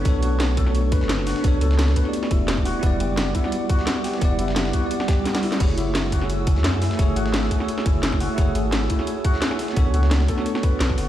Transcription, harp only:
\new Staff \with { instrumentName = "Harp" } { \time 4/4 \key fis \minor \tempo 4 = 173 r8 fis'8 r8 a'8 r8 b'8 r8 fis'8 | r8 a'8 r8 b'8 r8 e'8 r8 fis'8 | r8 g'8 r8 e'8 r8 fis'8 r8 g'8 | r8 e'8 r8 fis'8 r8 g'8 r8 e'8 |
r8 e'8 r8 fis'8 r8 gis'8 r8 e'8 | r8 fis'8 r8 gis'8 r8 e'8 r8 fis'8 | r8 gis'8 r8 e'8 r8 fis'8 r8 gis'8 | r8 fis'8 r8 a'8 r8 b'8 r8 fis'8 | }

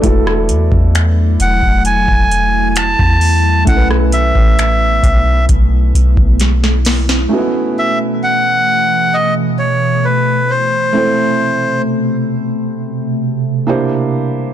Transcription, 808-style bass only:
\new Staff \with { instrumentName = "808-style bass" } { \clef bass \time 4/4 \key b \mixolydian \tempo 4 = 66 e,,8 e,16 e,8. e,,16 e,,8 e,,4 e,8. | b,,8. a,,8. b,,8 b,,8 b,,16 b,,4~ b,,16 | r1 | r1 | }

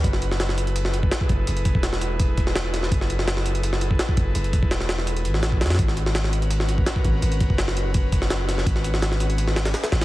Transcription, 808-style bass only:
\new Staff \with { instrumentName = "808-style bass" } { \clef bass \time 4/4 \key fis \minor \tempo 4 = 167 fis,,2. r8 fis,,8 | fis,,8. e,,2.~ e,,16 | fis,,2. r8 fis,,8 | fis,,8. e,,4.~ e,,16 a,,4 fis,8 |
gis,,2. r8 gis,,8 | gis,,8. fis,,2.~ fis,,16 | gis,,2. r8 gis,,8 | }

